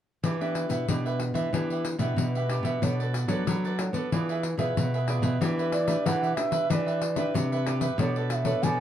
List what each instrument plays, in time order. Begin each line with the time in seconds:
0.23 nylon-string guitar E3 B3 D4 G4, cavaquinho D4 G4 B4 E5, pandeiro
0.40 nylon-string guitar B3 D4 G4, cavaquinho G4 B4 E5, pandeiro
0.55 pandeiro
0.69 nylon-string guitar B2, cavaquinho G4 B4 E5, pandeiro
0.88 nylon-string guitar B2 B3 D4 G4, cavaquinho D4 G4 B4 E5, pandeiro
1.05 cavaquinho G4 B4 E5, pandeiro
1.20 muted cavaquinho stroke, pandeiro
1.34 nylon-string guitar E3, cavaquinho G4 B4 E5, pandeiro
1.53 nylon-string guitar E3 B3 D4 G4, cavaquinho D4 G4 B4 E5, pandeiro
1.70 cavaquinho G4 B4 E5, pandeiro
1.85 muted cavaquinho stroke, pandeiro
1.99 nylon-string guitar B2 B3 D4 G4, cavaquinho G4 B4 E5, pandeiro
2.16 nylon-string guitar B2, pandeiro
2.35 cavaquinho G4 B4 E5, pandeiro
2.49 nylon-string guitar B3 D4 G4, cavaquinho D4 G4 B4 E5, pandeiro
2.63 nylon-string guitar B2, cavaquinho G4 B4 E5, pandeiro
2.82 nylon-string guitar B2 B3 D4 A4 C#5, cavaquinho D4 A4 B4 D5, pandeiro
3.00 cavaquinho A4 B4 D5, pandeiro
3.14 pandeiro
3.28 nylon-string guitar F#3 D4 A4 C#5, cavaquinho A4 B4 D5, pandeiro
3.47 nylon-string guitar F#3, cavaquinho D4 A4 B4 D5, pandeiro
3.64 cavaquinho A4 B4 D5, pandeiro
3.79 nylon-string guitar D4 A4 C#5, muted cavaquinho stroke, pandeiro
3.93 nylon-string guitar B3, cavaquinho A4 B4 D5, pandeiro
4.12 nylon-string guitar E3 F4 G#4 D5, cavaquinho D4 G#4 B4 E5, pandeiro
4.29 cavaquinho G#4 B4 E5, pandeiro
4.43 muted cavaquinho stroke, pandeiro
4.58 nylon-string guitar B2 F4 G#4 D5, cavaquinho G#4 B4 E5, pandeiro
4.76 nylon-string guitar B2, pandeiro
4.94 cavaquinho G#4 B4 E5, pandeiro
5.08 cavaquinho D4 G#4 B4 E5, nylon-string guitar F4 G#4 D5, pandeiro
5.22 nylon-string guitar B2, cavaquinho G#4 B4 E5, pandeiro
5.41 nylon-string guitar E3 D4 G4 B4, cavaquinho D4 G4 B4 E5, pandeiro
5.58 cavaquinho G4 B4 E5, pandeiro
5.72 bansuri D5, pandeiro
5.87 nylon-string guitar D4 G4 B4, cavaquinho G4 B4 E5, pandeiro
6.05 nylon-string guitar B2 E3, cavaquinho D4 G4 B4 E5, bansuri F#5, pandeiro
6.22 cavaquinho G4 B4 E5, pandeiro
6.36 nylon-string guitar D4 G4 B4, bansuri E5, muted cavaquinho stroke, pandeiro
6.51 cavaquinho G4 B4 E5, pandeiro
6.70 nylon-string guitar E3 D4 G4 B4, cavaquinho D4 G4 B4 E5, bansuri D#5, pandeiro
6.74 bansuri D5
6.86 cavaquinho G4 B4 E5, pandeiro
7.02 muted cavaquinho stroke, pandeiro
7.16 nylon-string guitar D4 G4 B4, cavaquinho G4 B4 E5, pandeiro
7.34 nylon-string guitar C3, pandeiro
7.52 cavaquinho G4 B4 E5, pandeiro
7.66 cavaquinho D4 G4 B4 E5, nylon-string guitar D4 G4 B4, pandeiro
7.81 cavaquinho G4 B4 E5, pandeiro
7.98 nylon-string guitar B2 B3 D4 A4 C#5, cavaquinho D4 A4 B4 D5, pandeiro
8.16 cavaquinho A4 B4 D5, pandeiro
8.30 bansuri F5, pandeiro
8.35 bansuri E5
8.45 nylon-string guitar D4 A4 C#5, cavaquinho A4 B4 D5, pandeiro
8.63 nylon-string guitar B2 F#3, cavaquinho D4 A4 B4 D5, bansuri G#5, pandeiro